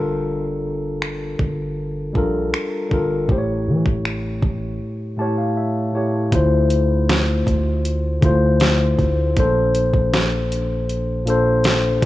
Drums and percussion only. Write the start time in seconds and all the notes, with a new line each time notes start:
1.02 finger snap
1.39 kick
2.15 kick
2.54 finger snap
2.91 kick
3.29 kick
3.86 kick
4.05 finger snap
4.43 kick
6.32 kick, closed hi-hat
6.70 closed hi-hat
7.09 snare, closed hi-hat
7.47 kick, closed hi-hat
7.85 closed hi-hat
8.23 kick, closed hi-hat
8.60 snare, closed hi-hat
8.99 kick, closed hi-hat
9.37 kick, closed hi-hat
9.75 closed hi-hat
9.94 kick
10.14 snare, closed hi-hat
10.52 closed hi-hat
10.89 closed hi-hat
11.27 closed hi-hat
11.64 snare, closed hi-hat